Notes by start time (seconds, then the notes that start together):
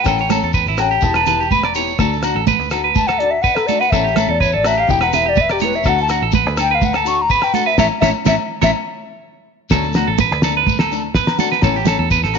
0.03 A1 E3 C#4 A4 G5, muted nylon-string guitar stroke, kick, cross-stick, muted conga, low agogo, shekere
0.08 A4
0.18 C#5, shekere
0.29 A3 C#4 A4, cross-stick, closed hi-hat, high conga, low agogo, shekere
0.43 E2 A4, shekere
0.53 B4, kick, shekere
0.66 A1 E4, shekere
0.77 C#4 F#4 A4 G5, cross-stick, closed hi-hat, muted conga, low agogo, shekere
0.90 G4, shekere
1.01 E1 B3 E4 G4 A5, muted nylon-string guitar stroke, kick, muted conga, shekere
1.14 B4, cross-stick, low agogo, shekere
1.26 B3 E4 G4 B4, closed hi-hat, muted conga, low conga, shekere
1.40 G4, shekere
1.51 B4 B5, kick, high conga, shekere
1.63 D5, cross-stick, low agogo
1.75 B3 E4 G4 C#5, closed hi-hat, shekere
1.87 shekere
1.98 D2 A3 D4 F#4 A4, kick, cross-stick, muted conga, low agogo, shekere
2.12 shekere
2.23 D4 F#4, cross-stick, closed hi-hat, low agogo, shekere
2.35 A1 A4
2.47 B4, kick, high conga, shekere
2.59 D2, shekere
2.70 D4 F#4 A4, cross-stick, closed hi-hat, muted conga, low agogo, shekere
2.84 B4
2.95 A5, kick, muted conga, high conga, shekere
3.07 A4 F#5, cross-stick, low agogo
3.19 D4 F#4 D5, closed hi-hat, muted conga
3.31 E5
3.42 B4 F#5, kick, shekere
3.55 A4, cross-stick, low agogo, shekere
3.67 F#4 A4 D5, closed hi-hat, high conga, shekere
3.71 D4
3.80 B4 F#5, shekere
3.90 A1 E3 A3 C#4 A4 E5, kick, cross-stick, low agogo, shekere
4.04 G4, shekere
4.14 A3 C#4 A4, cross-stick, closed hi-hat, high conga, low agogo, shekere
4.28 E2 A4 D5
4.40 B4 C#5, kick, shekere
4.53 A1 A4 D5
4.64 A3 C#4 F#4 A4 E5, cross-stick, closed hi-hat, muted conga, low agogo, shekere
4.78 G4 F5
4.87 E1 E3 B3 E4 G4 G5, kick, muted conga, shekere
5.01 B4 F#5, cross-stick, low agogo, shekere
5.12 B3 E4 G4 B4 E5, closed hi-hat, muted conga, low conga, shekere
5.26 G4 D5
5.36 B4, kick, high conga, shekere
5.41 E5
5.49 G4 D5, cross-stick, low agogo, shekere
5.59 B3 E4 G4 C#5, closed hi-hat, high conga, shekere
5.64 B4
5.72 E5, shekere
5.83 D2 A3 D4 F#4 A4, kick, cross-stick, muted conga, low agogo, shekere
5.89 F#5
5.98 shekere
6.02 A5
6.08 D4 F#4, cross-stick, closed hi-hat, low agogo, shekere
6.22 A1 A4
6.32 B4, kick, high conga, shekere
6.46 D2, shekere
6.57 D4 A4 G5, cross-stick, closed hi-hat, muted conga, low agogo, shekere
6.71 B4 F5
6.82 F#5, kick, muted conga, high conga, shekere
6.93 A4 A5, cross-stick, low agogo, shekere
7.05 D4 F#4 C#6, closed hi-hat, muted conga, shekere
7.22 A#5
7.30 B4 B5, kick, shekere
7.41 G5, cross-stick, low agogo, shekere
7.54 D4 F#4 A4 F#5, closed hi-hat, high conga, shekere
7.66 B4 E5, shekere
7.78 A1 A3 C#4 E4 A4 C#5 E5, kick, snare, high conga, low agogo, shekere
8.01 A1 A3 C#4 E4 A4 C#5 E5, kick, snare, high conga, low agogo, shekere
8.25 A1 A3 C#4 E4 A4 C#5 E5, kick, snare, high conga, low agogo, shekere
8.62 A1 A3 C#4 E4 A4 C#5 E5, kick, snare, high conga, low agogo, shekere
9.70 D2 F#3 A3 D4 A4, muted nylon-string guitar stroke, kick, snare, muted conga, low agogo, shekere
9.83 shekere
9.93 A3 D4 F#4, snare, low agogo, shekere
10.07 A1 A4
10.18 B4, kick, high conga, shekere
10.31 D2, snare, shekere
10.42 A3 D4 A4, snare, low agogo, shekere
10.57 B4
10.67 kick, muted conga, high conga, shekere
10.79 A4, snare, low agogo, shekere
10.91 A3 D4, muted nylon-string guitar stroke, muted conga, shekere
11.15 B4, kick, snare, shekere
11.27 snare, low agogo, shekere
11.38 A3 D4 F#4 A4, snare, high conga, shekere
11.52 B4, snare, shekere
11.61 A1 E3 A3 C#4 A4, muted nylon-string guitar stroke, kick, snare, muted conga, low agogo, shekere
11.76 G4, shekere
11.85 A3 C#4 A4, snare, high conga, low agogo, shekere
11.99 E2 A4
12.11 B4, kick, shekere
12.23 A1 A4, snare, shekere
12.34 C#4 F#4 A4, muted conga, low agogo, shekere